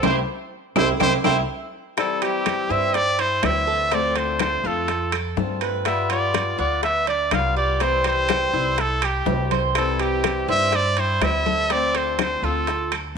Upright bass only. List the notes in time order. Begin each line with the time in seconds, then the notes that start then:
0.03 C2
0.76 C2
1.00 C2
1.24 C2
2.70 G2
3.43 D2
4.64 F2
5.37 G2
6.59 D2
7.31 C2
8.53 C2
9.26 C2
10.48 G2
11.21 D2
12.42 D2